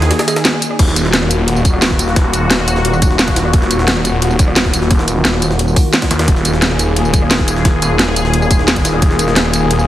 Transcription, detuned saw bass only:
0.00 0.11 D#2 loud
0.79 2.15 D#1 loud
2.16 3.52 D#1 loud
3.54 4.89 D#1 loud
4.91 5.24 D#1 loud
5.25 5.75 D#1 loud
6.11 6.26 D#2 loud
6.28 7.64 D#1 loud
7.65 9.01 D#1 loud
9.02 9.87 D#1 loud

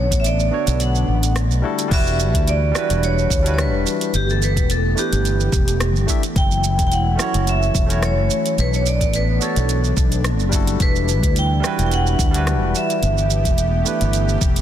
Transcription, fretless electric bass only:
0.00 0.11 B1 loud
0.11 0.49 A1 medium
0.67 1.05 B1 medium
1.08 1.51 A1 medium
1.51 1.61 B1 medium
1.91 2.34 E1 medium
2.34 2.71 D2 medium
2.90 3.27 E1 medium
3.30 3.74 D2 medium
3.74 3.84 E1 loud
4.14 4.57 G1 loud
4.57 4.94 E1 loud
5.12 5.49 G1 medium
5.53 5.95 E1 medium
5.95 6.06 G1 loud
6.36 6.79 F#1 loud
6.79 7.16 E1 medium
7.34 7.71 F#1 medium
7.75 8.18 E1 medium
8.18 8.28 F#1 medium
8.58 9.01 B1 loud
9.01 9.38 A1 medium
9.57 9.94 B1 medium
9.97 10.40 B1 medium
10.40 10.77 F#1 loud
10.80 11.23 E1 loud
11.23 11.60 D2 medium
11.79 12.16 E1 medium
12.19 12.62 D2 medium
12.62 12.73 E1 medium
13.03 13.45 G1 loud
13.45 13.82 E1 medium
14.01 14.38 G1 medium
14.41 14.62 E1 medium

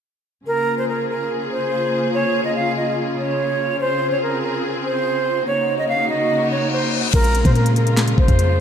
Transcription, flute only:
0.47 0.76 A#4 loud
0.78 0.88 C5 medium
0.89 1.08 A#4 medium
1.10 1.29 A#4 medium
1.51 2.10 C5 medium
2.14 2.43 C#5 loud
2.45 2.55 D#5 medium
2.56 2.75 F5 medium
2.76 2.96 D#5 medium
3.18 3.77 C#5 medium
3.81 4.10 C5 loud
4.12 4.21 C#5 medium
4.22 4.42 A#4 medium
4.43 4.62 A#4 medium
4.85 5.43 C5 medium
5.47 5.77 C#5 loud
5.78 5.88 D#5 medium
5.89 6.08 F5 loud
6.10 6.49 D#5 medium
6.51 6.71 C#5 medium
6.72 6.92 C5 medium
7.14 7.43 A#4 loud
7.45 7.55 C5 medium
7.55 7.75 A#4 medium
7.76 7.96 A#4 medium
8.18 8.60 C5 medium

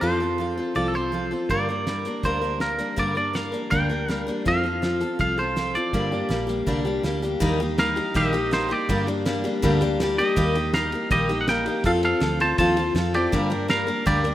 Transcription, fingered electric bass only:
0.02 0.58 F2 medium
0.76 1.32 C2 medium
1.50 2.06 G2 medium
2.24 2.80 D2 medium
2.98 3.54 G2 medium
3.72 4.29 D2 medium
4.46 5.03 F2 medium
5.20 5.76 C2 medium
5.93 6.21 G2 medium
6.29 6.61 A#1 medium
6.67 6.98 C2 medium
7.04 7.35 D2 medium
7.41 7.98 D#2 loud
8.15 8.72 A#1 medium
8.89 9.46 G2 loud
9.63 10.19 D2 medium
10.37 10.93 D#2 loud
11.11 11.67 A#1 medium
11.84 12.13 F2 medium
12.21 12.53 D2 medium
12.59 12.90 D#2 medium
12.94 13.26 F2 medium
13.33 13.89 G2 loud
14.06 14.35 D2 medium

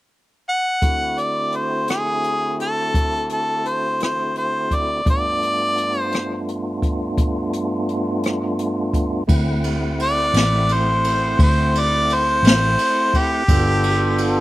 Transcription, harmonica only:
0.49 1.21 F#5 medium
1.19 1.57 D5 medium
1.56 1.89 C5 medium
1.90 2.56 G#4 medium
2.62 3.27 A4 medium
3.33 3.69 A4 medium
3.67 4.01 C5 medium
4.04 4.35 C5 medium
4.38 4.76 C5 medium
4.75 5.08 D5 medium
5.10 6.01 D5 medium
6.01 6.45 C5 medium
10.02 10.74 D5 medium
10.73 11.38 C5 medium
11.43 11.81 C5 medium
11.79 12.16 D5 medium
12.14 13.19 C5 medium
13.18 14.40 G4 loud

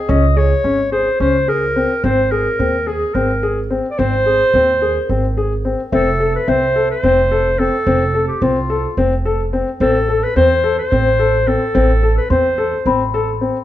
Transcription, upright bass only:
0.09 0.52 C#2 medium
0.64 1.07 G#1 medium
1.20 1.84 C#2 medium
2.04 2.46 G#1 medium
2.60 3.02 D#2 medium
3.15 3.79 G#1 medium
3.99 4.41 G#1 medium
4.54 4.96 D#2 medium
5.09 5.73 G#1 medium
5.92 6.35 F1 medium
6.48 6.90 C2 medium
7.03 7.67 F1 medium
7.87 8.29 F1 medium
8.42 8.84 C2 medium
8.97 9.61 F1 medium
9.80 10.23 A1 medium
10.36 10.79 E2 medium
10.92 11.56 A1 medium
11.75 12.17 A1 medium
12.30 12.73 E2 medium
12.86 13.49 A1 medium

